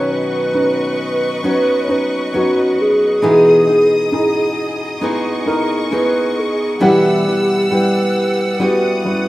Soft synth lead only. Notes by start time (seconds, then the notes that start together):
Already playing: C#5
0.12 B4
1.48 B4
1.84 C#5
1.91 B4
2.36 F#4
2.81 G#4
5.94 B4
6.39 G#4
6.84 G4
7.74 B4
8.63 B4
9.07 B4